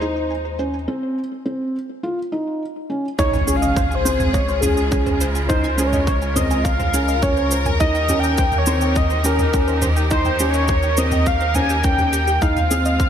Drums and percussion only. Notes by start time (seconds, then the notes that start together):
0.02 shaker
0.16 shaker
0.30 shaker
0.45 shaker
0.59 shaker
0.74 shaker
3.19 kick, shaker
3.34 mid tom, shaker
3.48 shaker
3.62 shaker
3.76 kick, mid tom, shaker
3.92 shaker
4.06 shaker
4.20 mid tom, shaker
4.34 kick, shaker
4.48 shaker
4.63 mid tom, shaker
4.77 shaker
4.92 kick, shaker
5.07 mid tom, shaker
5.21 shaker
5.35 shaker
5.50 kick, mid tom, shaker
5.64 shaker
5.78 shaker
5.93 mid tom, shaker
6.07 kick, shaker
6.22 shaker
6.36 mid tom, shaker
6.51 shaker
6.65 kick, shaker
6.80 mid tom, shaker
6.94 shaker
7.08 shaker
7.22 kick, mid tom, shaker
7.37 shaker
7.51 shaker
7.66 mid tom, shaker
7.80 kick, shaker
7.95 shaker
8.09 mid tom, shaker
8.23 shaker
8.38 kick, shaker
8.52 mid tom, shaker
8.66 shaker
8.81 shaker
8.96 kick, mid tom, shaker
9.10 shaker
9.24 shaker
9.39 mid tom, shaker
9.54 kick, shaker
9.68 shaker
9.82 mid tom, shaker
9.96 shaker
10.11 kick, shaker
10.25 mid tom, shaker
10.39 shaker
10.54 shaker
10.68 kick, mid tom, shaker
10.83 shaker
10.97 shaker
11.12 mid tom, shaker
11.26 kick, shaker
11.40 shaker
11.55 mid tom, shaker
11.69 shaker
11.84 kick, shaker
11.98 mid tom, shaker
12.13 shaker
12.28 shaker
12.42 kick, shaker
12.57 mid tom, shaker
12.71 shaker
12.85 shaker
13.00 kick, mid tom, shaker